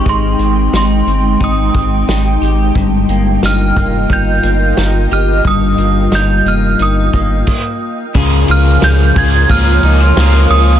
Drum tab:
CC |--------|--------|------x-|--------|
RD |--------|--------|--------|xxxxxxxx|
HH |xxxxxxxx|xxxxxxxx|xxxxxx--|--------|
TB |--------|--------|--------|--x---x-|
SD |--o---o-|--o---o-|--o-----|--o---o-|
BD |o---oo--|o--oo---|o----oo-|o--oo---|